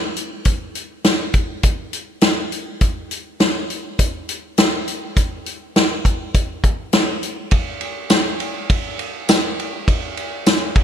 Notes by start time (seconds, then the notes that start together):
0.17 closed hi-hat
0.45 kick, closed hi-hat
0.75 closed hi-hat
1.04 snare, closed hi-hat
1.34 kick, closed hi-hat
1.63 kick, closed hi-hat
1.93 closed hi-hat
2.21 snare, closed hi-hat
2.52 closed hi-hat
2.81 kick, closed hi-hat
3.11 closed hi-hat
3.40 snare, closed hi-hat
3.70 closed hi-hat
3.99 kick, closed hi-hat
4.29 closed hi-hat
4.58 snare, closed hi-hat
4.88 closed hi-hat
5.17 kick, closed hi-hat
5.46 closed hi-hat
5.76 snare, closed hi-hat
6.05 kick, closed hi-hat
6.34 kick, closed hi-hat
6.64 kick, closed hi-hat
6.93 snare, closed hi-hat
7.23 closed hi-hat
7.51 kick, ride
7.81 ride
8.10 snare, ride, tambourine
8.40 ride
8.70 kick, ride
8.99 ride
9.29 snare, ride, tambourine
9.60 ride
9.88 kick, ride
10.17 ride
10.46 snare, ride, tambourine
10.76 kick, ride